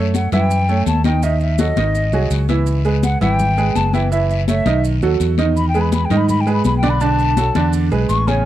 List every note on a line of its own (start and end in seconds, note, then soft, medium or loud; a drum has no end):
0.00 0.27 F#2 medium
0.00 0.27 A3 medium
0.00 0.27 A4 medium
0.00 0.27 C#5 medium
0.14 0.32 F#5 medium
0.14 high conga medium
0.14 short guiro medium
0.14 maracas medium
0.32 0.83 F#2 medium
0.32 0.62 E3 medium
0.32 0.63 E4 medium
0.32 0.63 E5 medium
0.32 0.85 G5 loud
0.32 high conga soft
0.32 low conga medium
0.32 short guiro medium
0.32 maracas soft
0.50 high conga soft
0.50 long guiro medium
0.50 maracas medium
0.69 0.98 A3 medium
0.69 0.99 A4 medium
0.69 0.99 C#5 medium
0.69 high conga soft
0.69 maracas soft
0.86 1.71 D#2 medium
0.86 1.05 A5 medium
0.86 high conga medium
0.86 short guiro medium
0.86 maracas medium
1.04 1.20 D#3 medium
1.04 1.20 D#4 medium
1.04 1.20 D#5 medium
1.04 1.25 G5 medium
1.04 high conga medium
1.04 short guiro medium
1.04 maracas soft
1.23 1.53 D#3 medium
1.23 1.53 D#4 medium
1.23 1.53 D#5 medium
1.23 1.41 E5 medium
1.23 high conga soft
1.23 long guiro medium
1.23 maracas medium
1.40 1.61 E5 medium
1.40 high conga soft
1.40 maracas soft
1.58 1.74 F#3 medium
1.58 1.74 F#4 medium
1.58 1.74 A4 medium
1.58 2.30 D#5 medium
1.58 high conga medium
1.58 short guiro medium
1.58 maracas medium
1.76 2.10 G#1 medium
1.76 2.07 D#3 medium
1.76 2.07 D#4 medium
1.76 2.07 D#5 medium
1.76 high conga medium
1.76 short guiro medium
1.76 maracas soft
1.95 high conga soft
1.95 long guiro medium
1.95 maracas medium
2.12 2.30 C2 medium
2.12 2.43 F#3 medium
2.12 2.43 F#4 medium
2.12 2.43 G#4 medium
2.12 high conga soft
2.12 maracas soft
2.30 3.15 C#2 loud
2.30 high conga soft
2.30 short guiro medium
2.30 maracas medium
2.49 2.79 E3 medium
2.49 2.79 E4 medium
2.49 2.79 E5 medium
2.49 high conga medium
2.49 short guiro medium
2.49 maracas soft
2.67 high conga soft
2.67 long guiro medium
2.67 maracas medium
2.85 3.15 G#3 medium
2.85 3.15 G#4 medium
2.85 3.15 B4 medium
2.85 high conga soft
2.85 maracas soft
3.03 3.21 F#5 medium
3.03 high conga medium
3.03 short guiro medium
3.03 maracas medium
3.21 3.72 G#1 medium
3.21 3.51 E3 medium
3.21 3.51 E4 medium
3.21 3.51 E5 medium
3.21 3.78 G5 loud
3.21 high conga soft
3.21 low conga medium
3.21 short guiro medium
3.21 maracas soft
3.39 high conga soft
3.39 low conga medium
3.39 long guiro medium
3.39 maracas medium
3.57 3.87 G#3 medium
3.57 3.88 G#4 medium
3.57 3.88 B4 medium
3.57 high conga soft
3.57 maracas soft
3.75 4.60 F#1 medium
3.75 3.95 A5 medium
3.75 high conga medium
3.75 short guiro medium
3.75 maracas medium
3.93 4.09 E3 medium
3.93 4.09 E4 medium
3.93 4.09 E5 medium
3.93 4.11 G5 medium
3.93 high conga medium
3.93 short guiro medium
3.93 maracas soft
4.12 4.42 E3 medium
4.12 4.42 E4 medium
4.12 4.29 E5 medium
4.12 4.42 E5 medium
4.12 high conga soft
4.12 long guiro medium
4.12 maracas medium
4.30 4.47 E5 medium
4.30 high conga soft
4.30 maracas soft
4.47 4.63 A3 medium
4.47 4.63 A4 medium
4.47 4.63 C#5 medium
4.47 4.83 E5 medium
4.47 high conga medium
4.47 short guiro medium
4.47 maracas medium
4.66 4.99 B1 medium
4.66 4.96 D#3 medium
4.66 4.96 D#4 medium
4.66 4.96 D#5 medium
4.66 high conga loud
4.66 short guiro medium
4.66 maracas soft
4.84 high conga soft
4.84 long guiro medium
4.84 maracas medium
5.02 5.19 D#2 medium
5.02 5.32 F#3 medium
5.02 5.32 F#4 medium
5.02 5.32 A4 medium
5.02 high conga soft
5.02 maracas soft
5.20 6.05 E2 loud
5.20 high conga soft
5.20 short guiro medium
5.20 maracas medium
5.38 5.68 D#3 medium
5.38 5.68 D#4 medium
5.38 5.68 D#5 medium
5.38 high conga medium
5.38 short guiro medium
5.38 maracas soft
5.56 5.68 B5 medium
5.56 high conga soft
5.56 long guiro medium
5.56 maracas medium
5.69 5.82 G5 loud
5.74 6.04 G#3 medium
5.74 6.05 G#4 medium
5.74 6.05 B4 medium
5.74 high conga soft
5.74 maracas soft
5.81 5.92 B5 medium
5.92 6.07 B5 medium
5.92 high conga medium
5.92 short guiro medium
5.92 maracas medium
6.05 6.19 G5 medium
6.10 6.61 G#2 loud
6.10 6.40 D#3 medium
6.10 6.40 D#4 medium
6.10 6.41 D#5 medium
6.10 high conga soft
6.10 low conga medium
6.10 short guiro medium
6.10 maracas soft
6.17 6.29 B5 medium
6.28 6.42 B5 medium
6.28 high conga soft
6.28 low conga medium
6.28 long guiro medium
6.28 maracas medium
6.41 6.52 G5 medium
6.47 6.76 G#3 medium
6.47 6.76 G#4 medium
6.47 6.77 B4 medium
6.47 high conga soft
6.47 maracas soft
6.53 6.65 B5 medium
6.64 7.49 B1 medium
6.64 6.77 B5 loud
6.64 high conga medium
6.64 short guiro medium
6.64 maracas medium
6.77 6.91 G5 loud
6.83 6.98 D3 medium
6.83 6.98 D4 medium
6.83 6.98 D5 medium
6.83 high conga medium
6.83 short guiro medium
6.83 maracas soft
6.90 7.03 B5 loud
7.01 7.31 D3 medium
7.01 7.31 D4 medium
7.01 7.31 D5 medium
7.01 7.71 A5 loud
7.01 long guiro medium
7.01 maracas medium
7.19 high conga soft
7.19 maracas soft
7.37 7.52 F#3 medium
7.37 7.52 F#4 medium
7.37 7.53 A4 medium
7.37 high conga medium
7.37 short guiro medium
7.37 maracas medium
7.55 7.89 E2 loud
7.55 7.85 D3 medium
7.55 7.85 D4 medium
7.55 7.85 D5 medium
7.55 high conga medium
7.55 short guiro medium
7.55 maracas soft
7.73 high conga soft
7.73 long guiro medium
7.73 maracas medium
7.91 8.08 B1 medium
7.91 8.21 G#3 medium
7.91 8.21 G#4 medium
7.91 8.21 B4 medium
7.91 high conga soft
7.91 maracas soft
8.09 8.45 A1 loud
8.09 8.29 C#6 loud
8.09 high conga soft
8.09 short guiro medium
8.09 maracas medium
8.28 8.45 C#3 medium
8.28 8.45 C#4 medium
8.28 8.45 C#5 medium
8.28 8.45 G#5 medium
8.28 high conga medium
8.28 short guiro medium
8.28 maracas soft